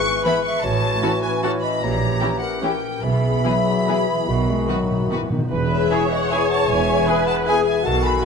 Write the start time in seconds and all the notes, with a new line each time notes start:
Already playing: G#2 E3 G#3 B3 B4 C#6
0.25 E3 B3 E4 B4 E5 B5
0.45 E4 E5 C#6
0.63 A1 A2 E3 F#4 C#5 A5
0.82 E3
1.02 E3 C#4 F#4 A4
1.22 E4 B4 G#5
1.43 E3 C#4 F#4 A4 C#5 A5
1.61 E4 D#5 B5
1.81 A#1 A#2 G4 C#5 A#5
2.00 A#3
2.21 E3 C#4 E4 G4
2.40 E4 A#4 F#5
2.62 E3 C#4 E4 G4 A#4 G5
2.82 E4
3.02 B1 B2 E3 G#4 E5 B5
3.22 G#3
3.43 E3 F#3 B3 E4 G#4
3.66 E4
3.87 E3 B3 E4 G#4
4.08 E3 E4
4.28 B1 B2 D#3 F#3 F#4
4.36 B2
4.43 B2
4.47 B2 F#3 G#3
4.59 B2
4.67 B2 D#3 F#3 B3 F#4 B4
4.75 B2
4.83 B2
4.91 B2 D#4
4.99 B2
5.07 B2 D#3 E3 F#4
5.11 B2 B3 F#4 B4
5.22 B2
5.30 B2 D#3 D#4
5.38 B2
5.50 E1 E2 E3 G#4 B4
5.69 G#4 C#5 E5
5.90 B3 E4 G#4 C#5
6.11 E4 D#5 F#5
6.30 B3 E4 G#4 E5 G#5
6.49 E4 F#5 A5
6.68 E1 E2 E3 E5 G#5
6.87 G#4
7.07 B3 E4 G#4 B4
7.27 E4 F#5 A5
7.47 B3 E4 G#4 E5 G#5
7.65 E4 E5 G#5
7.84 B1 B2 D#3 F#4 A4 F#5 A5
8.03 G#5 B5